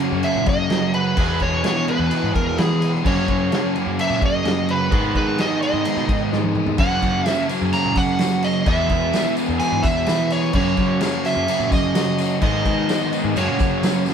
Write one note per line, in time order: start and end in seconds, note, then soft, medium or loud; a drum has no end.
0.00 1.15 F#2 medium
0.00 1.16 C#3 medium
0.00 1.16 F#3 medium
0.00 0.22 F#3 medium
0.00 1.16 A#3 medium
0.00 0.23 A#3 medium
0.00 1.17 C#4 medium
0.00 0.23 C#4 medium
0.00 0.24 F#4 medium
0.00 1.17 F#4 medium
0.00 crash medium
0.12 0.23 F#2 loud
0.22 0.93 F#2 loud
0.22 0.94 C#3 medium
0.22 0.68 F#3 medium
0.22 0.69 A#3 loud
0.22 0.70 C#4 loud
0.22 0.71 F#4 loud
0.22 0.48 E5 loud
0.22 crash medium
0.35 0.47 A#2 medium
0.46 0.68 F#2 medium
0.46 0.92 D#5 loud
0.46 kick loud
0.46 crash medium
0.69 0.94 F#3 medium
0.69 1.13 F#3 loud
0.69 0.94 A#3 medium
0.69 0.93 C#4 medium
0.69 0.92 F#4 medium
0.69 snare loud
0.69 crash medium
0.93 1.17 F#3 medium
0.93 1.16 A#3 medium
0.93 1.16 C#4 medium
0.93 1.16 F#4 medium
0.93 1.42 B4 loud
0.93 crash medium
1.17 1.88 E2 loud
1.17 1.39 E2 loud
1.17 1.88 B2 loud
1.17 1.63 E3 loud
1.17 1.64 G#3 loud
1.17 1.65 B3 loud
1.17 1.66 G#4 loud
1.17 kick loud
1.17 crash loud
1.40 1.62 E2 loud
1.40 1.64 C#5 loud
1.40 kick medium
1.40 crash medium
1.64 1.89 E3 medium
1.64 1.89 G#3 medium
1.64 1.88 B3 medium
1.64 1.86 G#4 loud
1.64 1.89 C#5 loud
1.64 snare loud
1.64 crash medium
1.87 2.10 E3 medium
1.87 2.11 G#3 medium
1.87 2.11 B3 medium
1.87 2.12 G#4 medium
1.87 2.32 B4 loud
1.87 crash medium
1.99 2.10 E2 loud
2.10 2.81 E2 loud
2.10 2.81 B2 loud
2.10 2.56 E3 loud
2.10 2.57 G#3 loud
2.10 2.58 B3 loud
2.10 2.59 G#4 loud
2.10 crash medium
2.23 2.35 G#2 medium
2.35 2.56 E2 medium
2.35 2.59 A#4 medium
2.35 kick medium
2.35 crash medium
2.57 2.82 E3 medium
2.57 3.01 E3 loud
2.57 2.81 G#3 medium
2.57 2.81 B3 medium
2.57 2.91 G#4 loud
2.57 2.80 G#4 medium
2.57 snare loud
2.57 crash medium
2.81 3.04 E3 medium
2.81 3.04 G#3 medium
2.81 3.04 B3 medium
2.81 3.03 G#4 medium
2.81 crash medium
2.95 snare soft
3.05 3.75 F#2 loud
3.05 3.26 F#2 loud
3.05 3.75 C#3 loud
3.05 3.50 F#3 loud
3.05 3.51 A#3 loud
3.05 3.52 C#4 loud
3.05 3.53 F#4 loud
3.05 3.72 C#5 loud
3.05 kick loud
3.05 crash loud
3.28 3.50 F#2 loud
3.28 kick medium
3.28 crash medium
3.51 3.76 F#3 loud
3.51 3.75 A#3 medium
3.51 3.74 C#4 medium
3.51 3.74 F#4 loud
3.51 snare loud
3.51 crash medium
3.75 3.98 F#3 medium
3.75 3.98 A#3 medium
3.75 3.98 C#4 medium
3.75 3.99 F#4 medium
3.75 crash medium
3.86 3.97 F#2 medium
3.98 4.68 F#2 loud
3.98 4.68 C#3 loud
3.98 4.44 F#3 medium
3.98 4.44 A#3 loud
3.98 4.45 C#4 loud
3.98 4.46 F#4 loud
3.98 4.24 E5 loud
3.98 crash loud
4.10 4.22 A#2 loud
4.22 4.43 F#2 loud
4.22 4.72 D#5 loud
4.22 kick loud
4.22 crash medium
4.45 4.88 F#2 medium
4.45 4.70 F#3 medium
4.45 4.69 A#3 medium
4.45 4.69 C#4 medium
4.45 4.68 F#4 medium
4.45 snare loud
4.45 crash medium
4.69 4.91 F#3 medium
4.69 4.91 A#3 medium
4.69 4.91 C#4 medium
4.69 4.91 F#4 medium
4.69 5.15 B4 medium
4.69 crash medium
4.91 5.61 G#2 loud
4.91 5.13 G#2 loud
4.91 5.62 D#3 loud
4.91 5.38 G#3 loud
4.91 5.39 B3 loud
4.91 5.39 D#4 loud
4.91 5.40 G#4 loud
4.91 kick loud
4.91 crash medium
5.15 5.37 G#2 loud
5.15 5.40 B4 medium
5.15 kick medium
5.15 crash medium
5.38 5.64 G#3 medium
5.38 5.63 B3 medium
5.38 5.62 D#4 loud
5.38 5.61 G#4 loud
5.38 5.62 D#5 loud
5.38 snare loud
5.38 crash medium
5.62 5.86 G#3 medium
5.62 5.86 B3 medium
5.62 5.86 D#4 medium
5.62 5.87 G#4 medium
5.62 6.52 D#5 medium
5.62 crash medium
5.74 5.84 G#2 loud
5.85 6.56 G#2 medium
5.85 6.56 D#3 loud
5.85 6.31 G#3 loud
5.85 6.32 B3 loud
5.85 6.32 D#4 loud
5.85 6.33 G#4 loud
5.85 crash loud
5.97 6.08 B2 medium
6.08 6.30 G#2 medium
6.08 kick loud
6.08 crash medium
6.32 6.75 G#2 medium
6.32 6.58 G#3 medium
6.32 6.57 B3 medium
6.32 6.56 D#4 medium
6.32 6.55 G#4 medium
6.32 snare medium
6.44 high tom medium
6.55 6.79 G#3 medium
6.55 6.79 B3 medium
6.55 6.79 D#4 medium
6.55 6.78 G#4 medium
6.55 mid tom loud
6.67 floor tom medium
6.78 7.00 F#2 loud
6.78 7.50 F#2 loud
6.78 7.50 C#3 loud
6.78 7.25 F#3 loud
6.78 7.26 A#3 loud
6.78 7.26 C#4 loud
6.78 7.27 F#4 loud
6.78 7.29 F#5 loud
6.78 kick loud
6.78 tambourine soft
6.78 crash loud
7.02 7.24 F#2 loud
7.02 kick medium
7.02 tambourine soft
7.02 crash medium
7.26 7.51 F#3 medium
7.26 7.50 A#3 medium
7.26 7.50 C#4 loud
7.26 7.49 F#4 loud
7.26 7.46 E5 loud
7.26 snare loud
7.26 tambourine medium
7.26 crash medium
7.49 7.73 F#3 medium
7.49 7.73 A#3 medium
7.49 7.74 C#4 medium
7.49 7.74 F#4 medium
7.49 tambourine medium
7.49 crash medium
7.61 7.72 F#2 medium
7.73 8.43 F#2 loud
7.73 8.43 C#3 loud
7.73 8.19 F#3 loud
7.73 8.20 A#3 loud
7.73 8.21 C#4 loud
7.73 8.22 F#4 loud
7.73 7.97 A#5 loud
7.73 tambourine medium
7.73 crash medium
7.85 7.96 A#2 medium
7.96 8.17 F#2 medium
7.96 8.45 F#5 loud
7.96 kick loud
7.96 tambourine medium
7.96 crash medium
8.19 8.45 F#3 medium
8.19 8.63 F#3 loud
8.19 8.44 A#3 medium
8.19 8.44 C#4 medium
8.19 snare loud
8.19 tambourine loud
8.19 crash medium
8.23 8.42 F#4 loud
8.43 8.67 F#3 medium
8.43 8.66 A#3 medium
8.43 8.66 C#4 medium
8.43 8.65 F#4 medium
8.43 8.66 D#5 medium
8.43 tambourine medium
8.43 crash medium
8.66 8.88 E2 loud
8.66 9.37 E2 loud
8.66 9.38 B2 loud
8.66 9.12 E3 loud
8.66 9.13 G#3 loud
8.66 9.14 B3 loud
8.66 9.14 G#4 loud
8.66 9.33 E5 loud
8.66 kick loud
8.66 tambourine soft
8.66 crash medium
8.89 9.11 E2 loud
8.89 kick medium
8.89 tambourine soft
8.89 crash medium
9.13 9.38 E3 medium
9.13 9.37 G#3 loud
9.13 9.37 B3 medium
9.13 9.35 G#4 medium
9.13 snare loud
9.13 tambourine loud
9.13 crash medium
9.37 9.60 E3 medium
9.37 9.60 G#3 medium
9.37 9.61 B3 medium
9.37 9.61 G#4 medium
9.37 tambourine medium
9.37 crash medium
9.49 9.59 E2 loud
9.59 10.30 E2 medium
9.59 10.31 B2 medium
9.59 10.06 E3 loud
9.59 10.07 G#3 loud
9.59 10.08 B3 loud
9.59 10.09 G#4 loud
9.59 9.84 G#5 loud
9.59 tambourine medium
9.59 crash medium
9.72 9.84 G#2 medium
9.83 10.05 E2 loud
9.83 10.31 E5 loud
9.83 kick loud
9.83 tambourine medium
9.83 crash medium
10.06 10.32 E3 medium
10.06 10.50 E3 loud
10.06 10.31 G#3 medium
10.06 10.31 B3 medium
10.06 10.30 G#4 medium
10.06 snare loud
10.06 tambourine loud
10.06 crash loud
10.30 10.54 E3 medium
10.30 10.54 G#3 medium
10.30 10.53 B3 medium
10.30 10.53 G#4 medium
10.30 10.54 C#5 medium
10.30 tambourine medium
10.30 crash medium
10.43 snare soft
10.53 10.75 F#2 loud
10.53 11.25 F#2 loud
10.53 11.25 C#3 loud
10.53 10.99 F#3 loud
10.53 11.01 A#3 loud
10.53 11.01 C#4 loud
10.53 11.02 F#4 loud
10.53 11.27 C#5 loud
10.53 kick loud
10.53 tambourine soft
10.53 crash loud
10.77 10.99 F#2 loud
10.77 kick medium
10.77 tambourine soft
10.77 crash medium
11.01 11.25 F#3 loud
11.01 11.25 A#3 loud
11.01 11.24 C#4 medium
11.01 11.23 F#4 loud
11.01 snare loud
11.01 tambourine medium
11.01 crash loud
11.24 11.48 F#3 medium
11.24 11.48 A#3 medium
11.24 11.48 C#4 medium
11.24 11.49 F#4 medium
11.24 11.73 E5 loud
11.24 tambourine medium
11.24 crash medium
11.36 11.47 F#2 medium
11.48 12.18 F#2 loud
11.48 12.18 C#3 loud
11.48 11.93 F#3 loud
11.48 11.94 A#3 loud
11.48 11.95 C#4 loud
11.48 11.96 F#4 loud
11.48 tambourine medium
11.48 crash loud
11.60 11.71 A#2 medium
11.71 11.93 F#2 medium
11.71 12.42 D#5 medium
11.71 kick loud
11.71 tambourine medium
11.71 crash medium
11.94 12.20 F#3 medium
11.94 12.38 F#3 medium
11.94 12.19 A#3 medium
11.94 12.19 C#4 medium
11.94 12.18 F#4 medium
11.94 snare loud
11.94 tambourine loud
11.94 crash loud
12.18 12.42 F#3 medium
12.18 12.41 A#3 medium
12.18 12.41 C#4 medium
12.18 12.41 F#4 medium
12.18 tambourine medium
12.18 crash medium
12.41 13.12 G#2 loud
12.41 12.63 G#2 loud
12.41 13.12 D#3 loud
12.41 12.88 G#3 loud
12.41 12.88 B3 loud
12.41 12.89 D#4 loud
12.41 12.91 G#4 loud
12.41 13.39 D#5 loud
12.41 kick loud
12.41 tambourine soft
12.41 crash loud
12.65 12.87 G#2 loud
12.65 kick medium
12.65 tambourine soft
12.65 crash medium
12.89 13.13 G#3 medium
12.89 13.13 B3 medium
12.89 13.12 D#4 loud
12.89 13.11 G#4 loud
12.89 snare loud
12.89 tambourine loud
12.89 crash medium
13.12 13.36 G#3 medium
13.12 13.35 B3 medium
13.12 13.35 D#4 medium
13.12 13.34 G#4 medium
13.12 tambourine medium
13.12 crash medium
13.24 13.35 G#2 loud
13.36 14.06 F#2 loud
13.36 13.47 F#2 loud
13.36 14.07 C#3 medium
13.36 13.81 F#3 loud
13.36 13.83 A#3 loud
13.36 13.83 C#4 loud
13.36 13.84 F#4 loud
13.36 14.03 C#5 medium
13.36 tambourine medium
13.36 crash medium
13.47 13.60 A#2 medium
13.59 13.81 F#2 medium
13.59 kick loud
13.59 tambourine medium
13.59 crash medium
13.83 14.07 F#3 medium
13.83 14.14 F#3 loud
13.83 14.06 A#3 medium
13.83 14.06 C#4 medium
13.83 14.05 F#4 loud
13.83 snare loud
13.83 tambourine loud
13.83 crash medium
14.06 14.14 F#3 medium
14.06 14.14 A#3 medium
14.06 14.14 C#4 medium
14.06 14.14 F#4 medium
14.06 snare medium
14.06 tambourine medium